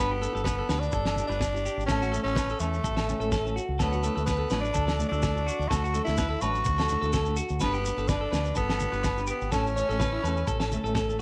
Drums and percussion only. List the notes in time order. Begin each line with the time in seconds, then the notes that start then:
0.22 shekere
0.37 shekere
0.44 kick, snare, muted conga, high conga, low agogo, shekere
0.69 snare, low agogo, shekere
0.83 shekere
0.92 kick, shekere
1.05 snare, low agogo, shekere
1.16 muted conga, high conga, shekere
1.31 shekere
1.40 kick, snare, high conga, low agogo, shekere
1.56 shekere
1.66 shekere
1.80 shekere
1.88 kick, snare, low agogo, shekere
2.01 snare, shekere
2.13 shekere
2.27 shekere
2.36 kick, snare, muted conga, high conga, low agogo, shekere
2.49 shekere
2.60 low agogo, shekere
2.74 shekere
2.84 kick, muted conga, low conga, shekere
2.97 snare, low agogo, shekere
3.08 muted conga, high conga, shekere
3.21 shekere
3.32 kick, snare, high conga, low agogo, shekere
3.46 shekere
3.57 shekere
3.79 kick, snare, low agogo, shekere
3.93 shekere
4.03 shekere
4.17 shekere
4.27 kick, snare, muted conga, high conga, low agogo, shekere
4.50 snare, low agogo, shekere
4.65 shekere
4.74 kick, shekere
4.88 snare, low agogo, shekere
4.99 muted conga, high conga, shekere
5.13 shekere
5.22 kick, snare, high conga, low agogo, shekere
5.37 shekere
5.48 shekere
5.62 shekere
5.70 kick, snare, muted conga, low agogo, shekere
5.84 shekere
5.94 shekere
6.07 snare, shekere
6.17 kick, snare, muted conga, high conga, low agogo, shekere
6.41 low agogo, shekere
6.55 shekere
6.65 kick, muted conga, low conga, shekere
6.78 snare, low agogo, shekere
6.89 muted conga, high conga, shekere
7.03 shekere
7.13 kick, snare, high conga, low agogo, shekere
7.25 shekere
7.37 shekere
7.49 shekere
7.60 kick, snare, low agogo, shekere
7.74 shekere
7.85 shekere
7.98 shekere
8.08 kick, snare, muted conga, high conga, low agogo, shekere
8.33 snare, low agogo, shekere
8.45 shekere
8.55 kick, shekere
8.69 snare, low agogo, shekere
8.80 muted conga, high conga, shekere
8.93 shekere
9.04 kick, snare, high conga, low agogo, shekere
9.18 shekere
9.27 shekere
9.41 shekere
9.52 kick, snare, low agogo, shekere
9.67 shekere
9.77 shekere
9.91 shekere
10.00 kick, snare, muted conga, high conga, low agogo, shekere
10.24 low agogo, shekere
10.37 shekere
10.47 kick, muted conga, low conga, shekere
10.60 snare, low agogo, shekere
10.72 muted conga, high conga, shekere
10.86 shekere
10.95 kick, snare, high conga, low agogo, shekere
11.10 shekere